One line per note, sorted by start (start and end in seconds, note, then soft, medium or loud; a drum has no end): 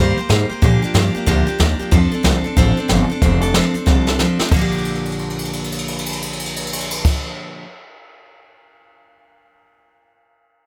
0.00 0.17 G2 medium
0.00 0.17 D#3 medium
0.00 0.18 G3 loud
0.00 0.18 A#3 loud
0.00 0.18 G4 loud
0.00 0.16 C5 loud
0.17 0.29 A#3 medium
0.17 0.30 G4 medium
0.17 0.30 C5 medium
0.17 muted upright bass stroke medium
0.29 0.49 G#2 loud
0.29 0.50 G3 medium
0.29 0.51 A#3 medium
0.29 0.50 G4 medium
0.29 0.48 C5 medium
0.29 snare loud
0.49 0.62 A#3 soft
0.49 0.63 G4 medium
0.49 0.62 C5 medium
0.49 muted upright bass stroke medium
0.62 0.82 A#2 medium
0.62 0.82 A#2 loud
0.62 0.83 D3 medium
0.62 0.83 F3 medium
0.62 0.83 A#3 medium
0.62 0.82 D4 loud
0.62 0.81 G4 loud
0.62 kick loud
0.62 open hi-hat medium
0.82 0.93 F3 medium
0.82 0.94 A#3 medium
0.82 0.95 D4 medium
0.82 0.95 G4 medium
0.82 muted upright bass stroke medium
0.94 1.14 G2 loud
0.94 1.15 F3 medium
0.94 1.15 A#3 medium
0.94 1.15 D4 medium
0.94 1.13 G4 medium
0.94 snare loud
0.94 open hi-hat medium
1.15 1.26 F3 soft
1.15 1.27 A#3 medium
1.15 1.27 D4 medium
1.15 1.27 G4 medium
1.15 muted upright bass stroke medium
1.26 1.46 D2 medium
1.26 1.47 A#2 loud
1.26 1.48 D3 loud
1.26 1.48 F3 medium
1.26 1.47 A#3 medium
1.26 1.47 D4 loud
1.26 1.45 G4 loud
1.26 kick loud
1.47 1.57 F3 medium
1.47 1.59 A#3 medium
1.47 1.60 D4 medium
1.47 1.59 G4 medium
1.47 muted upright bass stroke medium
1.59 1.79 D#2 medium
1.59 1.79 F3 medium
1.59 1.80 A#3 medium
1.59 1.79 D4 medium
1.59 1.78 G4 medium
1.59 snare loud
1.59 open hi-hat medium
1.79 1.90 F3 medium
1.79 1.92 A#3 soft
1.79 1.92 D4 medium
1.79 1.92 G4 medium
1.79 muted upright bass stroke medium
1.91 2.12 F2 medium
1.91 2.12 F3 medium
1.91 2.13 C4 loud
1.91 2.12 D4 medium
1.91 2.10 A4 medium
1.91 kick loud
1.91 open hi-hat medium
2.12 2.23 C4 medium
2.12 2.24 D4 medium
2.12 2.24 A4 medium
2.12 muted upright bass stroke medium
2.23 2.43 C2 loud
2.23 2.44 F3 medium
2.23 2.45 C4 medium
2.23 2.44 D4 medium
2.23 2.43 A4 medium
2.23 snare loud
2.23 open hi-hat soft
2.44 2.56 C4 soft
2.44 2.57 D4 medium
2.44 2.57 A4 medium
2.57 2.76 A1 medium
2.57 2.77 F3 medium
2.57 2.78 C4 loud
2.57 2.77 D4 medium
2.57 2.76 A4 loud
2.57 kick loud
2.57 open hi-hat medium
2.77 2.89 C4 soft
2.77 2.89 D4 medium
2.77 2.89 A4 medium
2.77 muted upright bass stroke medium
2.88 3.09 G1 loud
2.88 3.09 F3 medium
2.88 3.10 C4 medium
2.88 3.10 D4 medium
2.88 3.08 A4 medium
2.88 snare loud
2.88 open hi-hat medium
3.10 3.22 C4 soft
3.10 3.22 D4 medium
3.10 3.22 A4 medium
3.10 muted upright bass stroke medium
3.22 3.59 F1 loud
3.22 3.42 F3 medium
3.22 3.43 C4 medium
3.22 3.42 D4 medium
3.22 3.40 A4 medium
3.22 kick loud
3.22 closed hi-hat medium
3.42 3.54 C4 soft
3.42 3.55 D4 medium
3.42 3.54 A4 medium
3.42 closed hi-hat medium
3.54 3.75 F3 loud
3.54 3.75 C4 loud
3.54 3.74 D4 medium
3.54 3.73 A4 loud
3.54 snare loud
3.54 closed hi-hat medium
3.74 3.86 C4 soft
3.74 3.87 D4 soft
3.74 3.86 A4 medium
3.74 muted upright bass stroke medium
3.74 closed hi-hat medium
3.86 4.24 C2 medium
3.86 4.07 F3 medium
3.86 4.07 C4 medium
3.86 4.07 D4 medium
3.86 4.06 A4 medium
3.86 kick loud
3.86 snare medium
4.07 4.19 C4 medium
4.07 4.19 D4 medium
4.07 4.19 A4 medium
4.07 snare medium
4.19 4.39 F3 medium
4.19 4.40 C4 medium
4.19 4.40 D4 medium
4.19 4.38 A4 medium
4.19 snare medium
4.39 4.53 C4 soft
4.39 4.52 D4 medium
4.39 4.51 A4 medium
4.39 muted upright bass stroke medium
4.39 snare medium
4.49 7.06 A#1 loud
4.49 7.65 A#2 medium
4.49 7.65 D3 medium
4.49 kick loud
4.49 crash loud
4.54 7.65 F3 medium
4.54 7.65 A#3 medium
4.59 7.65 D4 medium
4.59 7.65 G4 medium
4.72 crash soft
4.78 ride soft
4.85 crash soft
4.95 ride soft
5.05 crash medium
5.11 ride medium
5.19 crash medium
5.30 ride medium
5.39 crash medium
5.45 ride medium
5.53 crash medium
5.64 ride medium
5.72 crash medium
5.79 ride medium
5.88 crash medium
5.99 ride medium
6.06 crash medium
6.12 ride medium
6.22 crash medium
6.33 ride medium
6.39 crash medium
6.46 ride medium
6.56 crash medium
6.67 ride medium
6.73 crash medium
6.80 ride medium
6.91 crash loud
7.05 kick loud
7.05 crash medium